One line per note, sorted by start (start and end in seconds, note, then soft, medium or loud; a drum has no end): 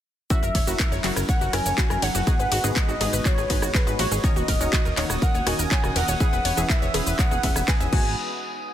0.30 0.64 F#3 loud
0.30 2.25 F#3 medium
0.30 0.64 C#4 medium
0.30 2.25 C#4 medium
0.30 0.64 E4 medium
0.30 2.25 E4 medium
0.30 0.38 F#4 loud
0.30 0.64 F#4 medium
0.30 0.64 A#4 medium
0.30 2.25 A#4 loud
0.30 0.64 E5 loud
0.30 1.04 E5 loud
0.30 kick loud
0.30 closed hi-hat medium
0.30 shaker medium
0.43 0.50 F#1 medium
0.43 0.54 A#4 medium
0.43 shaker soft
0.55 0.63 F#1 loud
0.55 0.59 C#5 loud
0.55 kick medium
0.55 closed hi-hat medium
0.55 open hi-hat loud
0.55 ride medium
0.67 0.75 F#1 loud
0.67 1.01 F#3 loud
0.67 1.01 C#4 medium
0.67 1.01 E4 medium
0.67 0.75 F#4 medium
0.67 1.01 F#4 medium
0.67 1.01 A#4 medium
0.67 1.01 E5 loud
0.67 shaker medium
0.79 0.91 A#4 loud
0.79 kick loud
0.79 snare loud
0.79 clap loud
0.79 closed hi-hat medium
0.79 shaker medium
0.92 0.99 F#1 medium
0.92 0.96 C#5 medium
0.92 snare medium
0.92 shaker soft
1.04 1.12 F#1 loud
1.04 1.50 F#3 medium
1.04 1.50 C#4 medium
1.04 1.50 E4 medium
1.04 1.50 F#4 medium
1.04 1.11 F#4 loud
1.04 1.50 A#4 medium
1.04 1.50 E5 medium
1.04 clap medium
1.04 closed hi-hat medium
1.04 open hi-hat loud
1.04 ride medium
1.16 1.24 F#1 medium
1.16 1.27 A#4 medium
1.16 cross-stick medium
1.16 shaker medium
1.29 1.33 C#5 loud
1.29 1.55 F#5 loud
1.29 kick loud
1.29 closed hi-hat medium
1.29 shaker medium
1.41 1.49 F#1 medium
1.41 1.48 F#4 medium
1.41 shaker soft
1.53 1.61 F#1 loud
1.53 1.67 F#3 medium
1.53 1.67 C#4 medium
1.53 1.67 E4 medium
1.53 1.67 F#4 medium
1.53 1.67 A#4 medium
1.53 1.64 A#4 loud
1.53 1.67 E5 medium
1.53 2.04 G#5 loud
1.53 cross-stick medium
1.53 closed hi-hat medium
1.53 open hi-hat loud
1.53 ride medium
1.66 1.73 F#1 medium
1.66 1.70 C#5 medium
1.66 shaker medium
1.78 1.85 F#4 loud
1.78 kick loud
1.78 snare loud
1.78 clap loud
1.78 closed hi-hat medium
1.78 shaker medium
1.90 1.98 F#1 medium
1.90 2.24 F#3 medium
1.90 2.24 C#4 medium
1.90 2.24 E4 medium
1.90 2.24 F#4 medium
1.90 2.24 A#4 medium
1.90 2.01 A#4 medium
1.90 2.24 E5 medium
1.90 cross-stick medium
1.90 shaker soft
2.02 2.10 G#1 loud
2.02 2.07 C#5 loud
2.02 2.78 F#5 loud
2.02 snare medium
2.02 closed hi-hat medium
2.02 open hi-hat loud
2.02 ride medium
2.15 2.22 F#1 medium
2.15 2.22 F#4 medium
2.15 snare soft
2.15 shaker medium
2.27 2.61 G#2 loud
2.27 4.22 G#3 medium
2.27 2.61 B3 medium
2.27 2.61 D#4 medium
2.27 4.22 D#4 medium
2.27 2.61 F#4 medium
2.27 6.17 F#4 medium
2.27 2.61 G#4 medium
2.27 2.38 G#4 loud
2.27 4.22 B4 loud
2.27 2.61 D#5 loud
2.27 kick loud
2.27 closed hi-hat medium
2.27 shaker medium
2.39 2.47 G#1 medium
2.39 2.44 B4 medium
2.39 shaker soft
2.52 2.59 G#1 loud
2.52 2.59 F#4 loud
2.52 closed hi-hat medium
2.52 open hi-hat loud
2.52 ride medium
2.64 2.72 G#1 loud
2.64 2.98 G#2 loud
2.64 2.98 B3 medium
2.64 2.98 D#4 medium
2.64 2.98 F#4 medium
2.64 2.75 G#4 medium
2.64 2.98 G#4 medium
2.64 2.98 D#5 loud
2.64 shaker medium
2.76 2.81 B4 loud
2.76 3.25 D#5 loud
2.76 kick loud
2.76 snare loud
2.76 clap loud
2.76 closed hi-hat medium
2.76 shaker medium
2.88 2.96 G#1 medium
2.88 2.96 F#4 medium
2.88 shaker soft
3.01 3.08 G#1 loud
3.01 3.47 G#2 medium
3.01 3.47 B3 medium
3.01 3.47 D#4 medium
3.01 3.47 F#4 medium
3.01 3.12 G#4 loud
3.01 3.47 G#4 medium
3.01 3.47 D#5 medium
3.01 closed hi-hat medium
3.01 open hi-hat loud
3.01 ride medium
3.13 3.21 G#1 medium
3.13 3.17 B4 medium
3.13 shaker medium
3.25 3.33 F#4 loud
3.25 3.71 C#5 loud
3.25 kick loud
3.25 clap medium
3.25 closed hi-hat medium
3.25 shaker medium
3.38 3.45 G#1 medium
3.38 3.49 G#4 medium
3.38 snare soft
3.38 shaker soft
3.50 3.58 G#1 loud
3.50 3.63 G#2 medium
3.50 3.63 B3 medium
3.50 3.63 D#4 medium
3.50 3.63 F#4 medium
3.50 3.63 G#4 medium
3.50 3.54 B4 loud
3.50 3.63 D#5 medium
3.50 kick medium
3.50 snare medium
3.50 closed hi-hat medium
3.50 open hi-hat loud
3.50 ride medium
3.62 3.70 G#1 medium
3.62 3.70 F#4 medium
3.62 cross-stick medium
3.62 shaker medium
3.75 3.86 G#4 loud
3.75 4.01 B4 medium
3.75 kick loud
3.75 snare loud
3.75 clap loud
3.75 open hi-hat medium
3.75 shaker medium
3.87 3.94 G#1 medium
3.87 4.21 G#2 medium
3.87 4.21 B3 medium
3.87 4.21 D#4 medium
3.87 4.21 F#4 medium
3.87 4.21 G#4 medium
3.87 3.91 B4 medium
3.87 4.21 D#5 medium
3.87 closed hi-hat soft
3.87 shaker soft
3.99 4.07 A#1 loud
3.99 4.06 F#4 loud
3.99 4.23 C#5 medium
3.99 closed hi-hat medium
3.99 open hi-hat loud
3.99 ride medium
4.11 4.19 G#1 medium
4.11 4.22 G#4 medium
4.11 shaker medium
4.24 4.58 D#3 loud
4.24 6.18 D#3 medium
4.24 6.18 A#3 medium
4.24 4.58 C#4 medium
4.24 6.18 C#4 medium
4.24 4.58 D#4 medium
4.24 4.58 F#4 medium
4.24 4.58 A#4 medium
4.24 4.28 C#5 loud
4.24 4.58 D#5 loud
4.24 4.94 D#5 medium
4.24 8.18 D#6 medium
4.24 kick loud
4.24 closed hi-hat medium
4.24 shaker medium
4.36 4.44 D#1 medium
4.36 4.43 F#4 medium
4.36 shaker soft
4.48 4.56 D#1 loud
4.48 4.59 A#4 loud
4.48 kick medium
4.48 closed hi-hat medium
4.48 open hi-hat loud
4.48 ride medium
4.61 4.68 D#1 medium
4.61 4.95 D#3 loud
4.61 4.95 C#4 medium
4.61 4.95 D#4 medium
4.61 4.95 F#4 medium
4.61 4.95 A#4 medium
4.61 4.65 C#5 medium
4.61 4.95 D#5 loud
4.61 shaker medium
4.73 4.80 F#4 loud
4.73 kick loud
4.73 snare loud
4.73 clap loud
4.73 closed hi-hat medium
4.73 shaker medium
4.85 4.93 D#1 medium
4.85 4.96 A#4 medium
4.85 snare medium
4.85 shaker soft
4.97 5.05 D#1 loud
4.97 5.44 D#3 medium
4.97 5.44 C#4 medium
4.97 5.44 D#4 medium
4.97 5.44 F#4 medium
4.97 5.44 A#4 medium
4.97 5.02 C#5 loud
4.97 5.44 D#5 medium
4.97 clap medium
4.97 closed hi-hat medium
4.97 open hi-hat loud
4.97 ride medium
5.10 5.17 D#1 medium
5.10 5.17 F#4 medium
5.10 cross-stick medium
5.10 shaker medium
5.22 5.33 A#4 loud
5.22 5.48 F#5 loud
5.22 kick loud
5.22 closed hi-hat medium
5.22 shaker medium
5.34 5.42 D#1 medium
5.34 5.39 C#5 medium
5.34 shaker soft
5.47 5.54 D#1 loud
5.47 5.60 D#3 medium
5.47 5.60 C#4 medium
5.47 5.60 D#4 medium
5.47 5.60 F#4 medium
5.47 5.54 F#4 loud
5.47 5.60 A#4 medium
5.47 5.60 D#5 medium
5.47 5.97 G#5 loud
5.47 cross-stick medium
5.47 closed hi-hat medium
5.47 open hi-hat loud
5.47 ride medium
5.59 5.67 D#1 medium
5.59 5.70 A#4 medium
5.59 shaker medium
5.71 5.76 C#5 loud
5.71 kick loud
5.71 snare loud
5.71 clap loud
5.71 closed hi-hat medium
5.71 shaker medium
5.84 5.91 D#1 medium
5.84 6.17 D#3 medium
5.84 6.17 C#4 medium
5.84 6.17 D#4 medium
5.84 6.17 F#4 medium
5.84 5.91 F#4 medium
5.84 6.17 A#4 medium
5.84 6.17 D#5 medium
5.84 cross-stick medium
5.84 shaker soft
5.96 6.03 E1 loud
5.96 6.07 A#4 loud
5.96 6.69 F#5 loud
5.96 snare medium
5.96 closed hi-hat medium
5.96 open hi-hat loud
5.96 ride medium
6.08 6.16 D#1 medium
6.08 6.13 C#5 medium
6.08 snare soft
6.08 shaker medium
6.20 7.91 E3 medium
6.20 6.54 E3 loud
6.20 7.91 C#4 medium
6.20 6.54 C#4 loud
6.20 6.54 E4 medium
6.20 6.54 G#4 medium
6.20 6.28 G#4 loud
6.20 7.91 B4 loud
6.20 6.54 B4 medium
6.20 6.54 E5 loud
6.20 kick loud
6.20 closed hi-hat medium
6.20 shaker medium
6.33 6.40 E1 medium
6.33 6.44 B4 medium
6.33 shaker soft
6.45 6.53 E1 loud
6.45 6.49 C#5 loud
6.45 closed hi-hat medium
6.45 open hi-hat loud
6.45 ride medium
6.57 6.65 E1 loud
6.57 6.91 E3 loud
6.57 6.91 C#4 medium
6.57 6.91 E4 medium
6.57 6.91 G#4 medium
6.57 6.65 G#4 medium
6.57 6.91 B4 medium
6.57 6.91 E5 loud
6.57 shaker medium
6.70 6.81 B4 loud
6.70 7.20 E5 loud
6.70 kick loud
6.70 snare loud
6.70 clap loud
6.70 closed hi-hat medium
6.70 shaker medium
6.82 6.90 E1 medium
6.82 6.86 C#5 medium
6.82 shaker soft
6.94 7.02 E1 loud
6.94 7.40 E3 medium
6.94 7.40 C#4 medium
6.94 7.40 E4 medium
6.94 7.02 G#4 loud
6.94 7.40 G#4 medium
6.94 7.40 B4 medium
6.94 7.40 E5 medium
6.94 closed hi-hat medium
6.94 open hi-hat loud
6.94 ride medium
7.07 7.14 E1 medium
7.07 7.17 B4 medium
7.07 shaker medium
7.19 7.23 C#5 loud
7.19 7.70 F#5 loud
7.19 kick loud
7.19 clap medium
7.19 shaker medium
7.31 7.39 E1 medium
7.31 7.38 G#4 medium
7.31 shaker soft
7.43 7.51 E1 loud
7.43 7.52 E3 medium
7.43 7.52 C#4 medium
7.43 7.52 E4 medium
7.43 7.52 G#4 medium
7.43 7.52 B4 medium
7.43 7.52 E5 loud
7.43 7.51 E5 medium
7.43 kick medium
7.43 snare medium
7.43 closed hi-hat medium
7.43 open hi-hat loud
7.43 ride medium
7.56 7.63 E1 medium
7.56 7.60 E5 medium
7.56 cross-stick medium
7.56 shaker medium
7.68 7.72 B4 medium
7.68 7.92 G#5 medium
7.68 kick loud
7.68 snare loud
7.68 clap loud
7.68 open hi-hat medium
7.68 shaker medium
7.80 7.88 E1 medium
7.80 7.89 E3 medium
7.80 7.89 C#4 medium
7.80 7.89 E4 medium
7.80 7.89 G#4 medium
7.80 7.89 B4 medium
7.80 7.89 E5 medium
7.80 7.88 E5 medium
7.80 closed hi-hat soft
7.80 shaker soft
7.93 8.15 G#1 loud
7.93 8.15 G#3 medium
7.93 8.11 B3 medium
7.93 8.11 D#4 medium
7.93 8.15 D#4 medium
7.93 8.15 F#4 medium
7.93 8.11 F#4 medium
7.93 8.16 F#4 medium
7.93 8.11 G#4 medium
7.93 8.15 B4 medium
7.93 8.11 D#5 loud
7.93 8.16 G#5 medium
7.93 kick loud
7.93 crash medium